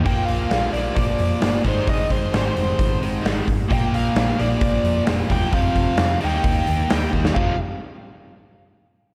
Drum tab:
HH |o-o-o-o-o-o-o-o-|o-o-o-o-o-o-o-o-|o-o-o-o-o-o-o-o-|o-o-o-o-o-o-o---|
SD |----o-------o---|----o-------o---|----o-------o---|----o-------o--o|
BD |o-------o-----o-|o-o-----o-----o-|o-------o-----o-|o-o-----o-----o-|

HH |----------------|
SD |----------------|
BD |o---------------|